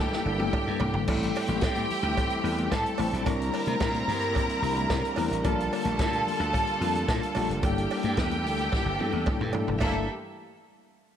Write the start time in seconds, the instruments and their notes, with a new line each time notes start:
Already playing: string section E3 A#3 G4 A4, tine electric piano G3 A#3 D4 E4 A4
0.00 violin section G4 G5
0.13 snare
0.26 slap bass G1, tine electric piano G3 A#3 D4 E4 A4, muted conga
0.40 high tom, high conga
0.53 kick, mid tom, cowbell
0.67 slap bass G2
0.80 slap bass C2, floor tom, cowbell, muted conga, high conga, low conga
0.94 slap bass G1, floor tom
1.07 slap bass A1, string section E3 A3 C4 G4, tine electric piano G3 A3 C4 E4 A4, violin section G4 G5, kick, crash, cowbell
1.23 closed hi-hat
1.35 open hi-hat, cowbell, muted conga
1.47 slap bass A1, closed hi-hat, high conga
1.61 slap bass A2, kick, snare, closed hi-hat, cowbell
1.75 closed hi-hat, high conga
1.90 open hi-hat, muted conga, low conga
2.03 slap bass D2, closed hi-hat
2.17 kick, closed hi-hat, cowbell, muted conga
2.30 closed hi-hat
2.44 slap bass E2, tine electric piano G3 A3 C4 E4 A4, open hi-hat
2.58 closed hi-hat, high conga
2.72 slap bass A2, violin section A4 A5, kick, snare, closed hi-hat, cowbell, muted conga
2.86 closed hi-hat
2.98 slap bass A1, tine electric piano G3 A3 C4 E4 C5, open hi-hat, cowbell, muted conga, high conga, low conga
3.13 slap bass A#1, closed hi-hat
3.26 slap bass C2, string section D3 A#3 C4 E4, tine electric piano G3 C4 D4 E4 A#4, violin section A#4 A#5, kick, closed hi-hat, cowbell, muted conga
3.42 closed hi-hat
3.54 open hi-hat, cowbell, muted conga
3.66 slap bass C3, closed hi-hat, high conga
3.80 slap bass A#2, kick, snare, closed hi-hat, cowbell
3.94 closed hi-hat, high conga
4.08 slap bass G2, open hi-hat, low conga
4.22 closed hi-hat
4.35 kick, closed hi-hat, cowbell
4.49 closed hi-hat
4.62 slap bass C2, tine electric piano G3 C4 D4 E4 G4, open hi-hat, muted conga
4.70 tine electric piano A#4
4.77 closed hi-hat, high conga
4.90 slap bass C3, kick, snare, closed hi-hat, cowbell
5.05 closed hi-hat
5.16 slap bass E2, tine electric piano G3 C4 D4 E4 A#4, open hi-hat, cowbell, high conga, low conga
5.31 slap bass A1, closed hi-hat
5.44 slap bass A#1, tine electric piano G3 A#3 D4 F4 A#4, string section G3 A#3 F4, violin section A4 A5, kick, closed hi-hat, cowbell
5.60 closed hi-hat
5.73 open hi-hat, cowbell
5.85 slap bass A#1, closed hi-hat, high conga
5.99 slap bass A#2, kick, snare, closed hi-hat, cowbell
6.13 closed hi-hat, high conga
6.27 open hi-hat, low conga
6.40 slap bass D2, closed hi-hat
6.53 kick, closed hi-hat, cowbell, muted conga
6.67 closed hi-hat
6.80 slap bass F2, tine electric piano G3 A#3 D4 F4 G4, open hi-hat, muted conga
6.88 tine electric piano A4
6.95 closed hi-hat, high conga
7.08 slap bass A#2, kick, snare, closed hi-hat, cowbell, muted conga
7.23 closed hi-hat
7.35 slap bass A#1, tine electric piano G3 A#3 D4 F4 G4, open hi-hat, cowbell, muted conga, high conga, low conga
7.50 slap bass F1, closed hi-hat
7.63 slap bass G1, string section E3 G4 A4, tine electric piano G3 A#3 D4 E4 A4, violin section G4 G5, kick, closed hi-hat, cowbell
7.78 closed hi-hat
7.91 open hi-hat, cowbell, muted conga
8.03 slap bass G2, closed hi-hat, high conga
8.17 slap bass E2, kick, snare, closed hi-hat, cowbell
8.31 closed hi-hat, high conga
8.45 slap bass D2, open hi-hat, low conga
8.59 closed hi-hat
8.72 kick, snare, cowbell
8.86 slap bass G1
8.99 slap bass G2, tine electric piano G3 A#3 D4 E4 G4, high tom, muted conga
9.06 tine electric piano A4
9.13 slap bass E2, high conga
9.26 kick, mid tom, cowbell, muted conga
9.41 slap bass G2, mid tom
9.53 tine electric piano G3 A#3 D4 E4 A4, floor tom, cowbell, muted conga, high conga, low conga
9.68 slap bass F1, floor tom
9.81 slap bass G1, string section E3 A3 A#3 G4, tine electric piano G3 A#3 D4 E4 A4, violin section A#3 A4 E5, kick, crash, cowbell, high conga